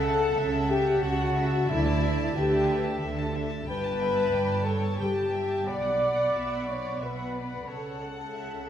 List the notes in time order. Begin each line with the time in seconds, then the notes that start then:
Already playing: C#2 C#3 A4 F#5 A5
0.01 E5 F#5
0.18 F#5
0.36 C#2 C#3 E5
0.53 F#5
0.69 G4 E5 G5
0.86 F#5
1.02 C#2 C#3 F#4 E5 F#5
1.19 F#5
1.35 E5
1.52 F#5
1.67 D2 D3 E4 D5 E5
1.86 A5
2.02 E5
2.18 A5
2.35 D2 D3 G4 B4 E5 G5
2.52 A5
2.68 E5
2.85 A5
3.01 D2 D3 A4 E5
3.18 A5
3.35 E5
3.52 A5
3.68 G1 G2 G4 B4 G5 A5 B5
3.85 A5
4.00 E5 G5
4.18 A5
4.34 G1 G2 D5 G5
4.52 A5
4.66 A4 C#5 G5 A5
4.84 A5
4.98 G1 G2 G4 B4 G5 A5
5.15 A5
5.32 E5 G5
5.50 A5
5.66 B1 B2 D5 F#5 B5 D6
5.84 F#5
6.01 D5 F#5
6.17 F#5
6.34 B1 B2 D5 E5
6.49 F#5
6.65 D5 C#6
6.70 C#5
6.82 F#5
6.99 B1 B2 B4 D5 E5 F#5 B5
7.03 B4
7.16 F#5
7.33 D5
7.51 F#5
7.66 C#2 C#3 A4 C#5 F#5 A5
8.02 F#5
8.35 E5